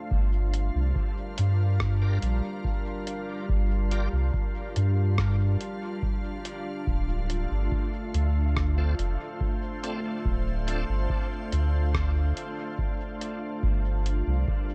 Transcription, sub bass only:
0.11 G1
0.75 C2
1.39 G2
2.23 A#1
3.49 G1
4.13 C2
4.76 G2
6.87 D1
7.51 G1
8.14 D2
8.99 F1
10.25 D1
10.89 G1
11.53 D2
13.64 G1
14.27 C2

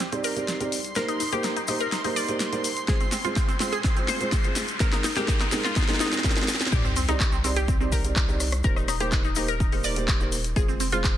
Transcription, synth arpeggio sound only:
0.00 C4
0.12 C4
0.24 A#4
0.96 A#4
1.08 D#4
1.20 D#4
1.33 G4
1.44 D#4
1.57 D#4
1.68 D#4
1.81 A#4
1.92 D#4
2.05 D#4
2.16 D5
2.88 G#4
3.01 C4
3.12 C4
3.24 F4
3.36 C4
3.48 C4
3.60 C4
3.72 G#4
3.84 C4
3.97 C4
4.08 C5
4.80 A#4
4.92 D#4
5.04 D#4
5.16 G4
5.28 D#4
5.41 D#4
5.52 D#4
5.64 F4
5.76 D#4
5.89 D#4
6.00 D#4
6.72 G4
6.85 C4
6.96 C4
7.09 D#4
7.20 C4
7.33 C4
7.44 C4
7.56 G4
7.68 C4
7.80 C4
7.92 A#4
8.64 A#4
8.76 D#4
8.88 D#4
9.01 G4
9.12 D#4
9.25 D#4
9.36 D#4
9.49 A#4
9.60 D#4
9.73 D#4
9.84 D5
10.56 G#4
10.69 C4
10.80 C4
10.93 F4
11.04 C4

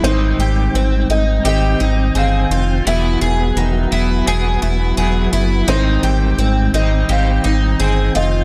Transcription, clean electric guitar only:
0.02 G#2 D#3 G3
0.06 C4 D#4 C5
1.43 G3 C4 D#4
1.48 C5
2.15 C4 D#4 C5
2.85 E3 F#3 B3 G#4
3.91 B3 E4 G#4
4.26 F#3 B3 E4 G#4
4.97 F#3 B3 E4 G#4
5.68 G#2 D#3 G3 C4 D#4 C5
6.74 C4 D#4 C5
6.78 G3
7.09 G3 C4 D#4 C5
7.81 C4 D#4 C5

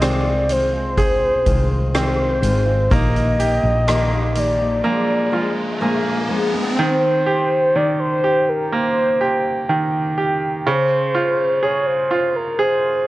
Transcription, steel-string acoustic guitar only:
0.00 C3 D#3 G#3 C4 F4
0.24 G#3 C4 F4
0.49 D#3 G#3 C4 F4
0.73 G#3 C4 F4
1.46 D#3 G#3 C4 F4
1.94 C3 D#3 G#3 C4 F4
2.42 D#3 G#3 C4 F4
2.66 G#3 C4 F4
2.90 A#2 D#3 A#3 D#4 G4
3.38 D#3 A#3 D#4 G4
3.87 A#2 D#3 A#3 D#4 G4
4.11 A#3 D#4 G4
4.35 D#3 A#3 D#4 G4
4.59 A#3 D#4 G4
4.84 A#2 F3 G#3 D4 G#4
5.31 F3 G#3 D4 G#4
5.80 A#2 F3 G#3 D4 G#4
6.28 F3 G#3 D4 G#4
6.52 G#3 D4 G#4

